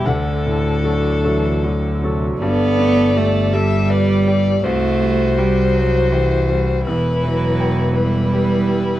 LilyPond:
<<
  \new Staff \with { instrumentName = "Violin" } { \time 6/8 \key g \major \tempo 4. = 54 a'2~ a'8 r8 | d''4. e''8 d''8 d''8 | c''2. | b'4. b'4. | }
  \new Staff \with { instrumentName = "Grand piano" } { \time 6/8 \key g \major << { fis''4. r4. | r2. | r2. | r2. | } \\ { d,8 a,8 <fis fis' a'>8 <fis fis' a'>8 fis8 <fis fis' a'>8 | g,8 a8 g'8 a'8 b'8 g'8 | c,8 g8 g'8 c''8 g'8 g8 | e,8 e8 g''8 b'8 g'8 g8 | } >> }
  \new Staff \with { instrumentName = "Viola" } { \time 6/8 \key g \major d'2~ d'8 r8 | a'4. g'4. | fis'2. | e'4. e'4. | }
  \new Staff \with { instrumentName = "Cello" } { \clef bass \time 6/8 \key g \major d4. e8 d8 c8 | b4 a8 g4. | a4 g8 fis8 e4 | r8 fis4 g4. | }
  \new Staff \with { instrumentName = "Double bass" } { \clef bass \time 6/8 \key g \major d,2. | g,,2. | c,2. | e,,2. | }
>>